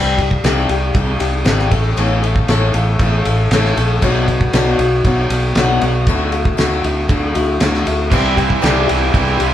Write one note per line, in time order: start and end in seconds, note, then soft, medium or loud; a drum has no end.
0.00 0.38 C2 loud
0.00 0.18 C3 medium
0.00 0.19 E3 medium
0.00 0.19 G3 medium
0.00 0.19 D4 medium
0.00 0.17 G4 loud
0.18 0.44 G3 soft
0.18 0.44 D4 medium
0.18 0.44 G4 medium
0.18 kick medium
0.18 ride medium
0.31 kick medium
0.44 0.66 C2 medium
0.44 0.70 C3 loud
0.44 0.70 E3 medium
0.44 0.70 G3 medium
0.44 0.69 D4 medium
0.44 0.68 G4 loud
0.44 snare loud
0.44 ride loud
0.69 0.92 C2 medium
0.69 0.94 G3 soft
0.69 0.95 D4 soft
0.69 0.95 G4 medium
0.69 ride medium
0.94 1.17 C2 loud
0.94 1.20 E3 medium
0.94 1.21 G3 medium
0.94 1.20 D4 medium
0.94 1.18 G4 medium
0.94 kick loud
0.94 ride loud
1.19 1.43 C2 medium
1.19 1.45 G3 soft
1.19 1.45 D4 medium
1.19 1.46 G4 medium
1.19 ride medium
1.45 1.68 G#1 loud
1.45 1.71 C3 medium
1.45 1.71 E3 medium
1.45 1.72 G3 medium
1.45 1.72 D4 medium
1.45 1.71 G4 medium
1.45 snare loud
1.45 ride loud
1.59 snare soft
1.71 1.94 A1 medium
1.71 1.97 A3 medium
1.71 1.97 C#4 medium
1.71 1.97 A4 medium
1.71 kick loud
1.71 ride medium
1.97 2.42 A1 loud
1.97 2.23 A2 medium
1.97 2.23 E3 medium
1.97 2.23 A3 loud
1.97 2.24 C#4 medium
1.97 2.21 A4 medium
1.97 ride loud
2.22 2.48 A3 medium
2.22 2.49 C#4 medium
2.22 2.48 A4 medium
2.22 ride medium
2.36 kick loud
2.48 2.71 A1 loud
2.48 2.74 A2 medium
2.48 2.74 E3 medium
2.48 2.75 A3 medium
2.48 2.75 C#4 medium
2.48 2.73 A4 loud
2.48 snare loud
2.48 ride medium
2.74 2.97 A1 loud
2.74 3.00 A3 soft
2.74 3.01 C#4 medium
2.74 3.00 A4 medium
2.74 ride medium
2.99 3.22 A1 loud
2.99 3.26 E3 medium
2.99 3.26 A3 medium
2.99 3.26 C#4 medium
2.99 3.24 A4 medium
2.99 kick loud
2.99 ride loud
3.25 3.48 A1 medium
3.25 3.52 A3 medium
3.25 3.52 C#4 medium
3.25 3.51 A4 medium
3.25 ride medium
3.51 3.73 A1 loud
3.51 3.77 A2 medium
3.51 3.77 E3 medium
3.51 3.77 A3 medium
3.51 3.77 C#4 medium
3.51 3.75 A4 loud
3.51 snare loud
3.51 ride loud
3.65 snare soft
3.76 3.99 A#1 medium
3.76 4.03 A3 medium
3.76 4.03 C#4 medium
3.76 4.02 A4 medium
3.76 ride medium
4.02 4.47 B1 loud
4.02 4.27 B2 medium
4.02 4.28 F#3 loud
4.02 4.28 B3 medium
4.02 4.28 D4 medium
4.02 4.26 F#4 loud
4.02 kick loud
4.02 ride loud
4.27 4.53 B3 soft
4.27 4.54 D4 medium
4.27 4.53 F#4 medium
4.27 kick medium
4.27 ride medium
4.41 kick medium
4.53 4.76 B1 loud
4.53 4.79 B2 loud
4.53 4.79 F#3 medium
4.53 4.79 B3 loud
4.53 4.79 D4 loud
4.53 4.77 F#4 loud
4.53 snare loud
4.53 ride loud
4.79 5.01 B1 medium
4.79 5.04 B3 soft
4.79 5.05 D4 medium
4.79 5.04 F#4 medium
4.79 ride medium
5.04 5.27 B1 loud
5.04 5.30 F#3 medium
5.04 5.30 B3 medium
5.04 5.31 D4 medium
5.04 5.30 F#4 medium
5.04 kick loud
5.04 ride loud
5.30 5.52 B1 medium
5.30 5.57 D4 medium
5.30 5.56 F#4 medium
5.30 ride medium
5.34 5.56 B3 soft
5.55 5.78 B1 loud
5.55 5.82 B2 medium
5.55 5.82 F#3 loud
5.55 5.82 B3 loud
5.55 5.82 D4 medium
5.55 5.80 F#4 loud
5.55 snare loud
5.55 ride loud
5.81 6.04 B1 loud
5.81 6.08 B3 medium
5.81 6.08 D4 medium
5.81 6.07 F#4 medium
5.81 ride medium
6.07 6.52 D2 medium
6.07 6.33 D3 medium
6.07 6.33 A3 medium
6.07 6.33 E4 loud
6.07 6.31 F#4 loud
6.07 kick loud
6.07 ride loud
6.32 6.57 A3 medium
6.32 6.57 E4 medium
6.32 6.58 F#4 medium
6.32 ride medium
6.45 kick loud
6.57 6.81 D2 loud
6.57 6.83 D3 medium
6.57 6.83 A3 medium
6.57 6.84 E4 loud
6.57 6.82 F#4 loud
6.57 snare loud
6.57 ride loud
6.83 7.06 D2 medium
6.83 7.09 A3 soft
6.83 7.10 E4 medium
6.83 7.09 F#4 medium
6.83 ride medium
7.09 7.32 D2 loud
7.09 7.34 D3 medium
7.09 7.35 A3 medium
7.09 7.35 E4 medium
7.09 7.33 F#4 medium
7.09 kick loud
7.09 ride medium
7.34 7.58 D2 loud
7.34 7.60 A3 soft
7.34 7.60 E4 medium
7.34 7.60 F#4 medium
7.34 ride medium
7.60 7.83 D2 medium
7.60 7.86 D3 medium
7.60 7.86 A3 medium
7.60 7.86 E4 loud
7.60 7.84 F#4 medium
7.60 snare loud
7.60 ride loud
7.74 snare soft
7.85 8.13 D2 medium
7.85 8.12 A3 medium
7.85 8.12 E4 medium
7.85 8.11 F#4 medium
7.85 ride medium
8.11 8.57 C2 medium
8.11 8.60 C3 medium
8.11 8.37 C3 medium
8.11 8.62 E3 loud
8.11 8.37 E3 medium
8.11 8.38 G3 medium
8.11 8.38 G3 loud
8.11 8.36 C4 loud
8.11 8.37 D4 medium
8.11 8.35 E4 loud
8.11 8.35 G4 loud
8.11 kick loud
8.11 crash loud
8.36 8.62 G3 medium
8.36 8.61 G3 medium
8.36 8.63 C4 medium
8.36 8.62 D4 medium
8.36 8.64 E4 medium
8.36 8.62 G4 medium
8.36 kick medium
8.36 ride medium
8.50 kick medium
8.61 8.86 C2 loud
8.61 8.88 C3 medium
8.61 9.13 C3 medium
8.61 8.88 E3 medium
8.61 9.12 E3 loud
8.61 8.88 G3 loud
8.61 8.89 G3 loud
8.61 8.87 C4 medium
8.61 8.88 D4 medium
8.61 8.87 E4 loud
8.61 8.86 G4 loud
8.61 snare loud
8.61 ride loud
8.87 9.12 C2 medium
8.87 9.12 G3 soft
8.87 9.12 G3 medium
8.87 9.13 C4 medium
8.87 9.13 D4 soft
8.87 9.14 E4 medium
8.87 9.13 G4 medium
8.87 ride medium
9.12 9.36 C2 loud
9.12 9.39 E3 medium
9.12 9.39 G3 medium
9.12 9.38 C4 medium
9.12 9.38 D4 medium
9.12 9.37 E4 medium
9.12 9.36 G4 medium
9.12 kick loud
9.12 ride loud
9.37 9.54 C2 medium
9.37 9.54 E3 medium
9.37 9.54 G3 medium
9.37 9.54 C4 medium
9.37 9.54 D4 medium
9.37 9.54 E4 medium
9.37 9.54 G4 medium
9.37 ride medium
9.41 9.54 C3 medium